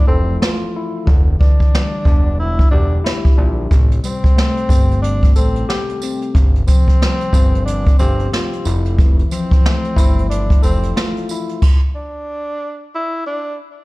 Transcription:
Already playing: E3 F3 A3 E4
0.07 F1 C4 A4
0.42 F4, snare
0.77 E4
1.06 E1 D3, kick
1.40 E3 D4, kick
1.60 kick
1.75 G3, snare
2.05 E1 D4, kick
2.39 E4
2.59 kick
2.71 E1 D4 G4
3.04 E4, snare
3.25 kick
3.37 A#1 D4
3.71 A1 C3, kick, closed hi-hat
3.91 closed hi-hat
4.04 G3 C4, closed hi-hat, tambourine
4.24 kick, closed hi-hat
4.36 A3, snare
4.57 closed hi-hat
4.69 G1 C4, kick, closed hi-hat, tambourine
4.91 closed hi-hat
5.02 D4, closed hi-hat
5.23 kick, closed hi-hat
5.36 A1 C4 A4, closed hi-hat, tambourine
5.56 closed hi-hat
5.69 G4, snare
5.89 closed hi-hat
6.02 C4, closed hi-hat, tambourine
6.22 closed hi-hat
6.35 G1 C3, kick, closed hi-hat
6.55 closed hi-hat
6.67 F3 C4, kick, closed hi-hat, tambourine
6.88 kick, closed hi-hat
7.02 G3, snare
7.21 closed hi-hat
7.33 G1 C4, kick, closed hi-hat, tambourine
7.55 closed hi-hat
7.65 D4, closed hi-hat
7.87 kick, closed hi-hat
7.99 G1 C4 G4, closed hi-hat, tambourine
8.20 closed hi-hat
8.33 F4, snare
8.53 closed hi-hat
8.65 F1 E4, closed hi-hat, tambourine
8.85 closed hi-hat
8.98 E3, kick, closed hi-hat
9.19 closed hi-hat
9.31 F3 C4, closed hi-hat, tambourine
9.51 kick, closed hi-hat
9.66 A3, snare
9.84 closed hi-hat
9.96 G1 E4, kick, closed hi-hat, tambourine
10.18 closed hi-hat
10.30 D4, closed hi-hat
10.50 kick, closed hi-hat
10.62 F1 C4 A4, closed hi-hat, tambourine
10.83 closed hi-hat
10.96 F4, snare
11.17 closed hi-hat
11.29 E4, closed hi-hat, tambourine
11.49 closed hi-hat
11.62 kick, crash
11.95 D4
12.95 E4
13.26 D4

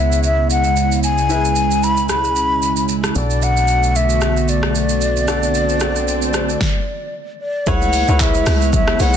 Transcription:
Already playing: C#2 C#3 G#3 B3 E4 G#4 B4 C#5 E5
0.12 shaker
0.24 E5, shaker
0.50 F#5, shaker
0.64 shaker
0.77 shaker
0.92 shaker
1.03 G#5, shaker
1.18 shaker
1.29 C#4 E4 G#4 B4 E5, shaker
1.45 shaker
1.56 shaker
1.71 shaker
1.83 B5, shaker
1.97 shaker
2.09 B5, cross-stick, shaker
2.25 shaker
2.36 shaker
2.63 shaker
2.76 shaker
2.89 shaker
3.04 cross-stick, shaker
3.15 B1 D3 A3 B3 D4 F#4 A4 D5, shaker
3.30 shaker
3.42 F#5, swell, shaker
3.57 shaker
3.68 shaker
3.83 shaker
3.96 E5, shaker
4.10 shaker
4.21 cross-stick, shaker
4.37 shaker
4.48 D5, shaker
4.63 cross-stick
4.75 shaker
4.89 shaker
5.01 shaker
5.17 shaker
5.28 D4 F#4 A4 D5, cross-stick, shaker
5.43 shaker
5.55 shaker
5.69 shaker
5.80 D4 F#4 A4 D5, cross-stick, shaker
5.96 shaker
6.08 shaker
6.22 shaker
6.34 cross-stick, shaker
6.49 shaker
6.61 kick, snare
7.42 D5
7.66 C#2 C#3 G#3 B3 E4 G#4 B4 C#5 F#5, kick, low conga, shaker
7.82 high conga, shaker
7.93 open hi-hat, high conga, shaker
8.08 C#2 E4 G#4 B4 C#5, shaker
8.20 E5, kick, clap, shaker
8.34 shaker
8.46 C#2, cross-stick, open hi-hat, high conga, shaker
8.62 shaker
8.73 E5, kick, low conga, shaker
8.87 cross-stick, high conga
9.00 B1 E4 G#4 B4 C#5 F#5, open hi-hat, shaker
9.14 shaker

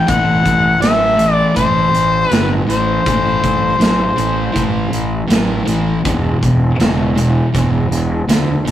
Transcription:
Already playing: G5
0.07 A1 A2 E3 F#5, kick, closed hi-hat
0.46 A1, kick, closed hi-hat
0.80 A1 A2 F#3 E5, snare, closed hi-hat
1.17 A2 E3, closed hi-hat
1.34 D5
1.54 A1 A2 E3 C5, kick, closed hi-hat
1.94 A1, closed hi-hat
2.27 G1 A2 F#3 B4
2.32 snare, closed hi-hat
2.67 A1 A2 E3 C5, closed hi-hat
3.06 A1 A2 E3, kick, closed hi-hat
3.44 A1, kick, closed hi-hat
3.78 A1 A2 F#3, closed hi-hat
3.82 snare
4.16 A1 A2 E3, closed hi-hat
4.53 A1 A2 E3, kick, closed hi-hat
4.93 A1, closed hi-hat
5.28 A1 A2 F#3, closed hi-hat
5.32 snare
5.66 A1 A2 E3, closed hi-hat
6.04 E1 E2 B2, kick, closed hi-hat
6.43 E1, kick, closed hi-hat
6.79 E1 E2 C#3, snare, closed hi-hat
7.15 E2 B2, closed hi-hat
7.54 E1 E2 B2, kick, closed hi-hat
7.91 E1, closed hi-hat
8.28 D2 E2 C#3, snare, closed hi-hat
8.66 E1 E2 B2, closed hi-hat

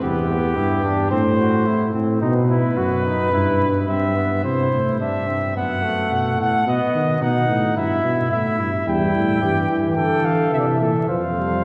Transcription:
0.02 E2 B3 G4
0.30 B3
0.57 G2 E4
0.84 D4
1.10 A2 C4 C5
1.39 F#4
1.67 E4
1.93 A2 C4
2.20 B2 D#4 B4
2.50 E4
2.77 F#2 F#4
3.06 D#4
3.32 G2 E4
3.88 G2 C4 E5
4.16 B3
4.44 C3 E4 C5
4.72 A2
5.00 G2 D4 E5
5.28 C4
5.56 F#2 B3 F#5
5.83 A3
6.11 B2
6.39 A2 F#5
6.67 B2 B3 D#5
6.94 D#3
7.22 B2 D#4 F#5
7.49 A2
7.76 G2 E4 E5
8.04 B2
8.31 A2 E5
8.59 G2 E4
8.86 E2 G3 E4 G5
9.14 A2
9.41 G2 E3 G4
9.70 E3
9.97 D3 A4 G5
10.25 F5
10.53 C3 E3 E5
10.59 D5
10.67 E5
10.81 A#2 A4
11.08 F2 F3 C5 F5
11.38 G3

